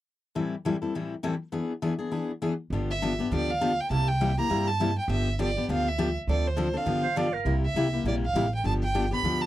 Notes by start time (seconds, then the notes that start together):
0.35 A2 E3 G3 C4 E4 A4
0.65 A2 E3 G3 C4 E4 A4
0.82 G3 C4 E4 A4
0.95 A2 E3 G3 C4 E4 A4
1.23 A2 E3 G3 C4 E4 A4
1.52 E3 B3 D4 G#4
1.82 E3 B3 D4 G#4
1.99 B3 D4 G#4
2.11 E3 B3 D4 G#4
2.42 E3 B3 D4 G#4
2.70 G1 D3 F3 B3 D4 G4
2.90 E5
3.02 D3 F3 B3 D4 G4
3.19 B3 D4 G4
3.31 D2 D3 F3 B3 D4 G4 D5
3.51 F5
3.61 D3 F3 B3 D4 G4
3.80 G5
3.90 C2 C3 G3 A#3 E4 G4 A5
4.08 G5
4.21 C3 G3 A#3 E4 G4
4.38 A#3 E4 G4 A#5
4.50 G2 C3 G3 A#3 E4 G4
4.67 A5
4.80 C3 G3 A#3 E4 G4
4.99 G5
5.08 G1 D3 F3 B3 D4 G4 E5
5.39 D3 F3 B3 D4 G4 D5
5.57 B3 D4 G4
5.69 D2 D3 F3 B3 D4 G4 F5
5.88 E5
5.98 D3 F3 B3 D4 G4
6.27 D2 D3 F3 C4 D4 A4 D5
6.47 C5
6.56 D3 F3 C4 D4 A4
6.74 C4 D4 A4 F5
6.86 G1 D3 F3 B3 D4 G4
7.03 C5
7.16 D3 F3 B3 D4 G4 D5
7.33 A#4
7.45 C2 C3 G3 A#3 E4 G4
7.66 E5
7.74 C2 C3 G3 A#3 E4 G4
7.93 A#3 E4 G4
8.04 A#1 C3 G3 A#3 E4 G4 D5
8.25 F5
8.33 A1 C3 G3 A#3 E4 G4
8.55 G5
8.64 G1 D3 F3 B3 D4 G4 A5
8.83 G5
8.94 D3 F3 B3 D4 G4
9.11 B3 D4 G4 B5
9.22 D2 D3 F3 B3 D4 G4
9.42 A5